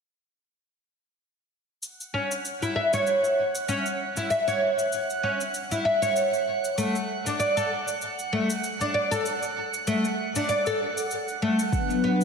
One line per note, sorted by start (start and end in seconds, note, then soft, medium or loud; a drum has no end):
1.83 12.24 F#5 medium
1.83 shaker soft
2.00 shaker soft
2.14 2.30 C#4 medium
2.31 shaker medium
2.45 shaker soft
2.62 2.75 E4 medium
2.62 shaker soft
2.76 2.92 E5 medium
2.93 3.06 C#5 medium
2.93 shaker medium
3.07 shaker soft
3.24 shaker soft
3.55 shaker medium
3.68 3.85 C#4 medium
3.68 shaker soft
3.86 shaker soft
4.17 4.30 E4 medium
4.17 shaker medium
4.30 4.47 E5 medium
4.30 shaker soft
4.48 4.61 C#5 medium
4.48 shaker soft
4.79 shaker medium
4.92 shaker medium
5.10 shaker soft
5.23 5.40 C#4 medium
5.41 shaker medium
5.54 shaker soft
5.71 5.84 E4 medium
5.71 shaker soft
5.85 6.02 E5 medium
6.02 6.15 C#5 medium
6.02 shaker medium
6.16 shaker medium
6.34 shaker soft
6.65 shaker medium
6.78 6.94 A3 medium
6.78 shaker soft
6.95 shaker soft
7.26 7.39 D4 medium
7.26 shaker medium
7.40 7.56 D5 medium
7.40 shaker medium
7.57 7.70 A4 medium
7.57 shaker soft
7.88 shaker medium
8.02 shaker soft
8.19 shaker soft
8.33 8.49 A3 medium
8.50 shaker medium
8.64 shaker soft
8.81 8.94 D4 medium
8.81 shaker soft
8.94 9.11 D5 medium
9.11 9.24 A4 medium
9.11 shaker medium
9.26 shaker medium
9.43 shaker soft
9.74 shaker medium
9.87 10.04 A3 medium
9.87 shaker medium
10.05 shaker soft
10.36 10.48 D4 medium
10.36 shaker medium
10.49 10.65 D5 medium
10.49 shaker soft
10.66 10.79 A4 medium
10.66 shaker soft
10.98 shaker medium
11.11 shaker soft
11.28 shaker soft
11.42 11.58 A3 medium
11.59 shaker medium
11.72 12.24 F#3 medium
11.72 12.24 B3 medium
11.72 12.24 D4 medium
11.72 12.24 B4 medium
11.72 kick loud
11.72 shaker medium
11.90 shaker soft
12.04 12.20 B3 medium
12.21 shaker medium